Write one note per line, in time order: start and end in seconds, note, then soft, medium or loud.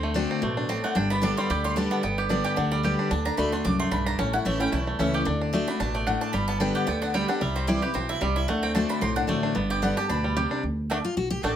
0.00 0.24 D2 loud
0.00 0.13 D3 medium
0.00 0.40 A3 medium
0.00 0.28 C4 medium
0.00 0.14 C5 medium
0.14 0.41 D3 medium
0.14 0.41 A3 loud
0.14 0.41 C4 loud
0.14 0.57 D4 medium
0.14 0.42 F#4 loud
0.31 0.67 C4 medium
0.42 0.78 A1 medium
0.42 0.68 B2 medium
0.42 0.81 A3 medium
0.57 0.96 D4 medium
0.69 0.95 A2 medium
0.69 0.96 C4 medium
0.69 0.83 A5 medium
0.84 0.96 A3 medium
0.84 0.95 F#5 loud
0.95 1.31 G1 medium
0.95 1.47 G2 loud
0.95 1.22 D4 medium
0.95 1.10 G5 medium
1.10 1.48 B3 medium
1.10 1.22 B5 loud
1.22 1.48 D3 loud
1.22 1.48 G3 medium
1.22 1.49 B3 loud
1.22 1.62 D4 medium
1.22 1.49 G4 loud
1.22 1.37 D6 loud
1.37 1.64 G3 medium
1.37 1.49 C6 loud
1.50 1.85 D2 medium
1.50 1.75 D3 medium
1.50 1.89 G4 medium
1.50 1.64 B5 loud
1.64 2.01 G3 medium
1.64 1.76 C6 loud
1.76 2.02 D3 medium
1.76 2.03 G3 medium
1.76 2.03 B3 loud
1.76 2.04 D4 medium
1.76 2.03 G4 loud
1.76 1.91 A5 loud
1.91 2.02 B3 medium
1.91 2.03 F#5 loud
2.03 2.39 G1 loud
2.03 2.55 G2 medium
2.03 2.42 B3 medium
2.03 2.18 G5 loud
2.18 2.44 G4 medium
2.18 2.30 B4 medium
2.29 2.56 D3 medium
2.29 2.56 G3 loud
2.29 2.56 B3 medium
2.29 2.56 D4 medium
2.29 2.57 G4 loud
2.29 2.44 D5 medium
2.44 2.82 G4 medium
2.44 2.56 G5 loud
2.56 2.93 D2 medium
2.56 2.82 D3 medium
2.56 2.96 D4 medium
2.56 2.71 F#5 medium
2.72 3.09 G3 medium
2.72 2.79 D5 loud
2.83 3.10 D3 medium
2.83 3.10 G3 medium
2.83 3.10 B3 loud
2.83 3.11 G4 medium
2.83 3.10 G4 loud
2.99 3.10 D4 medium
3.11 3.29 D2 loud
3.11 3.36 D3 medium
3.11 3.25 D4 medium
3.11 3.25 A5 medium
3.25 3.52 D4 medium
3.25 3.37 A#5 loud
3.37 3.61 D2 medium
3.37 3.52 D3 medium
3.37 3.52 A3 medium
3.37 3.79 A3 medium
3.37 3.53 D4 loud
3.37 3.51 F#4 loud
3.37 3.52 B5 medium
3.52 3.64 D4 medium
3.52 3.65 D4 medium
3.52 3.64 F#4 medium
3.52 3.64 C6 loud
3.65 3.88 C2 medium
3.65 3.90 F#2 medium
3.65 3.91 D4 medium
3.65 3.79 D6 loud
3.80 4.46 A3 medium
3.80 3.91 C6 loud
3.91 4.15 B1 medium
3.91 4.17 G2 medium
3.91 4.05 D4 medium
3.91 4.06 B5 loud
4.06 4.19 D4 medium
4.06 4.18 A#5 loud
4.19 4.36 A1 loud
4.19 4.70 A2 medium
4.19 4.57 C#4 medium
4.19 4.33 A5 loud
4.33 4.70 E4 medium
4.33 4.45 F#5 loud
4.45 4.68 A1 medium
4.45 4.59 E3 medium
4.45 4.60 A3 loud
4.45 4.84 A3 medium
4.45 4.60 C#4 loud
4.45 4.58 E4 loud
4.45 4.60 E5 medium
4.59 4.97 C#4 medium
4.59 4.72 C#4 medium
4.59 4.72 E4 medium
4.59 4.72 G5 loud
4.72 4.95 B1 medium
4.72 5.24 E2 loud
4.72 5.11 E4 medium
4.72 4.98 A5 loud
4.87 5.24 A3 medium
4.99 5.22 C#2 medium
4.99 5.25 E3 medium
4.99 5.25 A3 medium
4.99 5.26 C#4 medium
4.99 5.26 C#4 loud
4.99 5.26 E4 loud
4.99 5.14 E5 medium
5.14 5.26 G4 medium
5.14 5.39 D5 medium
5.25 5.61 D2 loud
5.25 5.51 D3 medium
5.25 5.40 D4 medium
5.41 5.67 D4 medium
5.53 5.67 D3 loud
5.53 5.67 A3 loud
5.53 5.92 A3 medium
5.53 5.68 D4 loud
5.53 5.67 F#4 loud
5.68 5.79 D4 medium
5.68 5.80 D4 soft
5.68 5.80 F#4 medium
5.68 5.79 B5 loud
5.80 6.15 A1 medium
5.80 6.06 B2 medium
5.80 6.06 D4 medium
5.80 5.94 A5 medium
5.95 6.31 A3 medium
5.95 6.06 D5 medium
6.07 6.33 A2 medium
6.07 6.20 D4 medium
6.07 6.21 F#5 medium
6.21 6.34 D4 medium
6.21 6.32 A5 loud
6.33 6.69 G1 loud
6.33 6.85 G2 medium
6.33 6.72 G3 medium
6.33 6.47 B5 loud
6.48 6.85 B3 medium
6.48 6.60 A5 loud
6.60 6.85 D3 medium
6.60 6.86 G3 medium
6.60 6.86 B3 loud
6.60 6.99 D4 medium
6.60 6.87 G4 loud
6.60 6.74 G5 medium
6.75 7.12 G4 medium
6.75 6.87 F#5 loud
6.87 7.23 D2 medium
6.87 7.13 D3 medium
6.87 7.26 B3 medium
6.87 7.01 G5 loud
7.02 7.28 D4 medium
7.02 7.14 F#5 loud
7.14 7.28 D3 medium
7.14 7.28 G3 medium
7.14 7.40 G3 medium
7.14 7.29 B3 medium
7.14 7.27 G4 medium
7.14 7.28 G5 loud
7.28 7.41 B3 soft
7.28 7.41 D4 medium
7.28 7.40 G4 medium
7.28 7.40 F#5 loud
7.41 7.76 C2 loud
7.41 7.92 C3 medium
7.41 7.80 G3 medium
7.41 7.55 E5 medium
7.56 7.92 C4 medium
7.56 7.67 C5 loud
7.67 7.82 E3 loud
7.67 7.82 G3 loud
7.67 7.82 C4 loud
7.67 8.07 E4 medium
7.67 7.80 E4 loud
7.67 7.82 D5 loud
7.81 7.95 C4 soft
7.81 7.94 E4 medium
7.81 8.19 G4 medium
7.81 7.94 B4 loud
7.94 8.17 B1 medium
7.94 8.20 B2 medium
7.94 8.33 C4 medium
7.94 8.09 C5 medium
8.09 8.35 E4 medium
8.09 8.21 E5 loud
8.21 8.44 C2 medium
8.21 8.47 C3 medium
8.21 8.48 G3 medium
8.21 8.36 D5 loud
8.36 8.48 E4 medium
8.36 8.48 E5 loud
8.48 8.83 D2 loud
8.48 8.74 D3 medium
8.48 8.87 A3 medium
8.48 8.62 F#5 loud
8.63 9.00 C4 medium
8.63 8.74 G5 loud
8.75 9.01 D3 loud
8.75 9.01 A3 loud
8.75 9.01 C4 loud
8.75 8.90 D4 medium
8.75 9.02 F#4 loud
8.75 8.89 A5 loud
8.89 9.16 D4 medium
8.89 9.01 B5 loud
9.01 9.25 B1 medium
9.01 9.53 A2 medium
9.01 9.41 C4 medium
9.01 9.16 C6 loud
9.16 9.43 D4 medium
9.16 9.24 F#5 loud
9.27 9.51 A1 medium
9.27 9.54 D3 medium
9.27 9.54 A3 medium
9.27 9.56 A3 medium
9.27 9.54 C4 loud
9.27 9.54 F#4 loud
9.43 9.82 D4 medium
9.55 9.91 G1 loud
9.55 10.06 G2 medium
9.55 9.94 B3 medium
9.70 9.96 G4 medium
9.70 9.82 G5 loud
9.82 9.96 D3 medium
9.82 9.97 G3 medium
9.82 9.97 B3 loud
9.82 10.08 D4 medium
9.82 9.96 G4 loud
9.82 9.97 F#5 loud
9.97 10.10 B3 medium
9.97 10.34 G4 medium
9.97 10.09 G4 medium
9.97 10.09 A5 loud
10.09 10.45 D2 medium
10.09 10.35 B2 medium
10.09 10.48 D4 medium
10.09 10.54 B5 loud
10.24 10.61 G3 medium
10.37 10.62 C3 medium
10.37 10.63 G4 medium
10.51 10.63 D4 medium
10.63 10.98 D2 loud
10.90 10.99 A3 loud
10.90 10.97 A3 medium
10.90 10.97 D4 medium
10.90 11.00 F#4 medium
10.90 11.00 D5 loud
10.90 11.00 A5 loud
11.05 11.16 F4 medium
11.17 11.39 B1 medium
11.17 11.30 F#4 medium
11.30 11.44 G4 loud
11.43 11.56 A1 medium
11.43 11.53 A3 medium
11.43 11.50 A3 medium
11.43 11.50 D4 medium
11.43 11.53 F#4 loud
11.43 11.56 A4 medium
11.43 11.54 D5 loud
11.43 11.54 A5 loud